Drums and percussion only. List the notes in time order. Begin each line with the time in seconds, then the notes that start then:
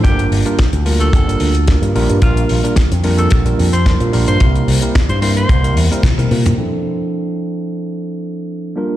0.05 kick, closed hi-hat
0.19 closed hi-hat
0.32 open hi-hat
0.46 closed hi-hat
0.59 kick, snare, closed hi-hat
0.73 closed hi-hat
0.86 open hi-hat
1.00 closed hi-hat
1.13 kick, closed hi-hat
1.29 closed hi-hat
1.40 open hi-hat
1.55 closed hi-hat
1.68 kick, snare, closed hi-hat
1.83 closed hi-hat
1.96 open hi-hat
2.09 closed hi-hat
2.22 kick, closed hi-hat
2.37 closed hi-hat
2.49 open hi-hat
2.65 closed hi-hat
2.76 kick, snare, closed hi-hat
2.92 closed hi-hat
3.04 open hi-hat
3.18 closed hi-hat
3.30 kick, closed hi-hat
3.46 closed hi-hat
3.59 open hi-hat
3.73 closed hi-hat
3.86 kick, snare, closed hi-hat
4.00 closed hi-hat
4.13 open hi-hat
4.28 closed hi-hat
4.40 kick, closed hi-hat
4.55 closed hi-hat
4.68 open hi-hat
4.82 closed hi-hat
4.95 kick, snare, closed hi-hat
5.09 closed hi-hat
5.22 open hi-hat
5.37 closed hi-hat
5.49 kick, closed hi-hat
5.64 closed hi-hat
5.77 open hi-hat
5.92 closed hi-hat
6.03 kick, snare, closed hi-hat, high tom
6.18 closed hi-hat, high tom
6.31 open hi-hat
6.46 closed hi-hat, mid tom